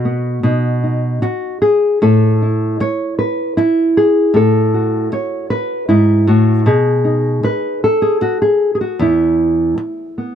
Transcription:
0.00 0.39 B2 medium
0.00 1.21 F#4 medium
0.05 0.39 B3 soft
0.43 1.22 B2 medium
0.43 0.82 D#4 soft
0.84 1.97 D#4 soft
1.22 1.61 F#4 medium
1.22 muted nylon-string guitar stroke soft
1.62 2.01 G#4 medium
2.02 2.80 A2 medium
2.02 2.80 A4 medium
2.42 3.56 E4 soft
2.80 3.18 C#5 medium
2.80 muted nylon-string guitar stroke medium
3.19 3.57 B4 medium
3.57 4.35 E4 medium
3.57 muted nylon-string guitar stroke medium
3.97 4.36 G#4 medium
4.34 5.11 A2 medium
4.34 5.12 A4 medium
4.74 6.27 F#4 soft
5.12 5.50 C#5 medium
5.12 muted nylon-string guitar stroke medium
5.50 5.88 B4 medium
5.89 6.28 G#2 medium
5.89 6.66 E4 medium
6.27 6.66 A2 medium
6.27 6.66 F#4 medium
6.66 7.42 B2 medium
6.66 8.01 G#4 medium
7.05 8.94 D#4 soft
7.43 7.82 B4 medium
7.43 muted nylon-string guitar stroke medium
7.84 8.80 A4 medium
8.02 8.21 G#4 medium
8.21 8.41 F#4 medium
8.21 muted nylon-string guitar stroke medium
8.42 8.74 G#4 medium
8.75 8.80 G#4 medium
8.81 8.99 F#4 medium
8.99 9.76 E2 medium
8.99 10.35 E4 medium
9.78 muted nylon-string guitar stroke medium
10.18 10.35 B3 soft

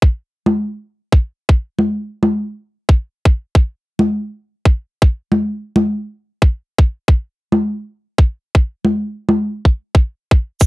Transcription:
0.02 kick loud
0.46 high conga medium
1.12 kick loud
1.49 kick loud
1.79 high conga medium
2.23 high conga medium
2.89 kick loud
3.25 kick loud
3.55 kick loud
3.99 high conga medium
4.65 kick medium
5.02 kick medium
5.32 high conga medium
5.76 high conga medium
6.42 kick medium
6.79 kick medium
7.08 kick loud
7.52 high conga medium
8.18 kick medium
8.55 kick medium
8.85 high conga medium
9.29 high conga medium
9.65 kick medium
9.95 kick medium
10.31 kick medium
10.60 kick loud
10.60 shaker soft

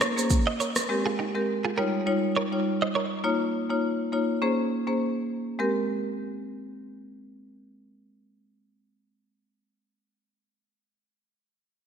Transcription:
0.01 0.11 A#4 medium
0.01 0.10 C#5 medium
0.01 cross-stick loud
0.01 shaker medium
0.17 0.31 A#3 medium
0.17 0.31 C#4 medium
0.17 0.31 G#4 medium
0.17 0.31 C5 medium
0.17 shaker medium
0.30 kick medium
0.30 shaker medium
0.47 0.55 C5 medium
0.47 0.54 D#5 medium
0.60 0.69 A#4 medium
0.60 0.69 C#5 medium
0.60 shaker soft
0.76 cross-stick medium
0.76 shaker medium
0.89 1.06 G#3 medium
0.89 1.06 C4 medium
0.89 1.06 G4 medium
0.89 1.06 A#4 loud
1.06 1.13 F4 medium
1.06 1.13 G#4 medium
1.19 1.28 D#4 medium
1.19 1.28 G4 medium
1.35 1.49 G#3 medium
1.35 1.49 C4 medium
1.35 1.49 G4 medium
1.35 1.49 A#4 medium
1.65 1.72 F4 medium
1.65 1.72 G#4 medium
1.77 1.94 G3 medium
1.77 1.95 D#4 medium
1.77 1.95 F4 medium
1.77 1.87 G4 medium
1.77 1.86 A#4 medium
1.77 1.95 C#5 medium
2.06 2.24 G3 medium
2.06 2.24 D#4 medium
2.06 2.24 F4 medium
2.06 2.24 C#5 loud
2.36 2.46 A#4 medium
2.36 2.45 C#5 medium
2.52 2.67 G3 medium
2.52 2.67 D#4 medium
2.52 2.67 F4 medium
2.52 2.67 C#5 medium
2.82 2.90 C5 medium
2.82 2.89 D#5 medium
2.95 3.05 A#4 medium
2.95 3.04 C#5 medium
3.24 3.41 A#3 medium
3.24 3.41 D#4 medium
3.24 3.41 F4 medium
3.24 3.41 C#5 loud
3.70 3.84 A#3 medium
3.70 3.84 D#4 medium
3.70 3.84 F4 medium
3.70 3.85 C#5 medium
4.12 4.30 A#3 medium
4.12 4.30 D#4 medium
4.12 4.30 F4 medium
4.12 4.30 C#5 medium
4.42 4.59 A#3 medium
4.42 4.59 C#4 medium
4.42 4.59 G#4 medium
4.42 4.59 C5 medium
4.87 5.02 A#3 medium
4.87 5.02 C#4 medium
4.87 5.02 G#4 medium
4.87 5.02 C5 medium
5.59 9.41 G#3 medium
5.59 9.41 C4 medium
5.59 9.41 G4 medium
5.59 9.41 A#4 medium

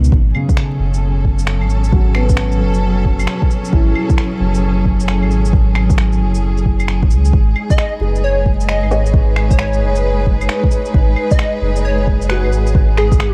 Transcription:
0.00 0.11 C#2 medium
0.00 0.16 B2 medium
0.00 0.13 D#3 medium
0.04 shaker medium
0.12 0.33 G#1 loud
0.12 7.34 F#3 medium
0.12 kick loud
0.26 8.02 C#4 medium
0.32 0.84 C#3 medium
0.32 13.34 G#4 medium
0.32 claves medium
0.49 7.34 A4 medium
0.49 kick loud
0.49 shaker medium
0.57 finger snap loud
0.79 1.63 F#1 loud
0.94 shaker soft
1.25 kick medium
1.39 shaker medium
1.47 finger snap loud
1.61 2.62 G#1 medium
1.61 claves soft
1.70 shaker soft
1.84 shaker medium
1.92 2.41 F#3 medium
1.92 kick loud
2.15 2.64 B3 medium
2.15 finger snap medium
2.15 claves medium
2.29 kick medium
2.29 shaker medium
2.37 finger snap medium
2.52 shaker soft
2.60 3.27 F#1 loud
2.74 shaker soft
3.05 kick medium
3.19 claves soft
3.19 shaker soft
3.27 finger snap loud
3.42 kick loud
3.51 shaker soft
3.65 shaker medium
3.73 3.94 G#1 medium
3.73 4.22 E4 medium
3.73 kick loud
3.96 claves medium
4.10 kick medium
4.10 shaker soft
4.18 finger snap medium
4.41 5.24 F#1 loud
4.55 shaker soft
4.85 kick medium
5.00 shaker medium
5.08 finger snap loud
5.22 6.22 G#1 medium
5.22 claves soft
5.31 shaker soft
5.45 shaker medium
5.53 kick loud
5.75 finger snap medium
5.75 claves medium
5.90 kick loud
5.90 shaker medium
5.98 finger snap loud
6.13 shaker soft
6.20 7.12 F#1 loud
6.35 shaker medium
6.57 shaker soft
6.66 kick medium
6.80 claves medium
6.80 shaker medium
6.88 finger snap loud
7.03 kick medium
7.10 7.32 C#2 medium
7.10 shaker soft
7.25 shaker medium
7.33 7.55 G#1 loud
7.33 13.34 G#3 medium
7.33 kick loud
7.52 13.34 D#4 medium
7.52 claves medium
7.70 7.94 D#5 medium
7.70 kick loud
7.70 shaker medium
7.78 finger snap loud
7.95 13.34 B4 medium
8.00 8.84 F#1 loud
8.00 8.50 G#4 medium
8.16 shaker medium
8.24 8.48 C#5 medium
8.46 kick medium
8.60 shaker medium
8.68 9.14 D#5 loud
8.68 finger snap loud
8.82 9.82 G#1 medium
8.82 claves soft
8.91 9.40 C#5 medium
8.91 shaker soft
9.06 shaker medium
9.14 kick loud
9.36 finger snap medium
9.36 claves medium
9.51 9.96 C#5 medium
9.51 kick loud
9.51 shaker medium
9.59 finger snap loud
9.73 shaker soft
9.81 10.48 F#1 medium
9.96 shaker medium
10.27 kick medium
10.41 claves soft
10.41 shaker medium
10.49 10.99 B4 medium
10.49 finger snap loud
10.64 kick loud
10.71 shaker soft
10.85 shaker medium
10.94 11.16 G#1 loud
10.94 kick loud
11.16 claves medium
11.31 11.55 D#5 medium
11.31 kick loud
11.31 shaker medium
11.39 finger snap loud
11.62 12.46 F#1 loud
11.76 shaker medium
11.85 12.09 C#5 medium
12.07 kick medium
12.22 shaker medium
12.29 12.79 F#4 medium
12.29 12.53 B4 medium
12.29 finger snap loud
12.44 13.34 G#1 medium
12.44 claves soft
12.52 shaker soft
12.67 shaker medium
12.75 kick loud
12.97 13.34 G#4 medium
12.97 finger snap medium
12.97 claves medium
13.12 kick loud
13.12 shaker medium
13.20 finger snap loud

